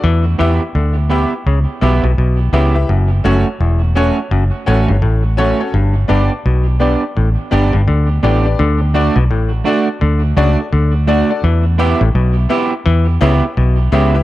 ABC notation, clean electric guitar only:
X:1
M:4/4
L:1/16
Q:"Swing 16ths" 1/4=84
K:D
V:1 name="Clean electric guitar"
z2 [B,EG] z3 [B,EG] z3 [B,EG] z3 [B,EG] z | z2 [A,CF] z3 [A,CF] z3 [A,CF] z3 [A,CF] z | z2 [B,DG] z3 [B,DG] z3 [B,DG] z3 [B,DG] z | z2 [A,DF] z3 [A,DF] z3 [A,DF] z3 [A,DF] z |
z2 [B,EG] z3 [B,EG] z3 [B,EG] z3 [B,EG] z |]